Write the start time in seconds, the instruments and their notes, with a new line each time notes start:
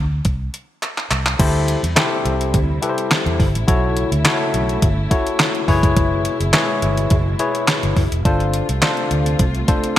Already playing: fingered electric bass D2
0.25 fingered electric bass C2, kick, closed hi-hat
0.54 closed hi-hat
0.83 clap, closed hi-hat
0.98 clap
1.11 fingered electric bass C2, clap, closed hi-hat
1.26 clap
1.39 fingered electric bass D2, string section C3 G3 E4, tine electric piano E4 G4 A4 C5, kick, closed hi-hat, crash
1.68 closed hi-hat
1.83 fingered electric bass E2, closed hi-hat
1.96 tine electric piano E4 G4 A4 C5, snare, clap, closed hi-hat
2.25 fingered electric bass C2, closed hi-hat
2.41 closed hi-hat
2.54 fingered electric bass D2, kick, closed hi-hat
2.82 tine electric piano E4 G4 A4 B4, closed hi-hat
2.89 tine electric piano C5
2.98 closed hi-hat
3.11 snare, clap, closed hi-hat
3.26 fingered electric bass E2, closed hi-hat
3.40 fingered electric bass G1, kick, open hi-hat
3.55 fingered electric bass A1, closed hi-hat
3.67 fingered electric bass B1, string section C#3 A3, tine electric piano E4 F#4 A4 C#5, kick, closed hi-hat
3.97 closed hi-hat
4.12 fingered electric bass D2, closed hi-hat
4.25 tine electric piano E4 F#4 A4 C#5, snare, clap, closed hi-hat
4.54 fingered electric bass B1, closed hi-hat
4.69 closed hi-hat
4.82 fingered electric bass G1, kick, closed hi-hat
5.11 tine electric piano E4 F#4 A4 C#5, kick, closed hi-hat
5.27 closed hi-hat
5.40 snare, clap, closed hi-hat
5.55 closed hi-hat
5.68 fingered electric bass F#1, string section B2 G#3, tine electric piano E4 G#4 B4 C#5, kick, open hi-hat
5.83 kick, closed hi-hat
5.97 kick, closed hi-hat
6.25 closed hi-hat
6.40 fingered electric bass F#1, closed hi-hat
6.53 tine electric piano E4 G#4 B4 C#5, snare, clap, closed hi-hat
6.82 fingered electric bass G1, closed hi-hat
6.97 closed hi-hat
7.10 fingered electric bass F#1, kick, closed hi-hat
7.39 tine electric piano E4 G#4 B4 C#5, closed hi-hat
7.55 closed hi-hat
7.68 snare, clap, closed hi-hat
7.83 fingered electric bass G1, closed hi-hat
7.96 fingered electric bass F#1, kick, open hi-hat
8.12 fingered electric bass E1, closed hi-hat
8.25 fingered electric bass G1, string section C3 A3 F4, tine electric piano D4 F4 A4 C5, kick, closed hi-hat
8.40 closed hi-hat
8.54 closed hi-hat
8.69 fingered electric bass C2, closed hi-hat
8.82 tine electric piano D4 F4 A4 C5, snare, clap, closed hi-hat
8.97 closed hi-hat
9.11 fingered electric bass D2, closed hi-hat
9.26 closed hi-hat
9.39 fingered electric bass C2, kick, closed hi-hat
9.55 closed hi-hat
9.68 tine electric piano D4 F4 A4 C5, kick, closed hi-hat
9.84 closed hi-hat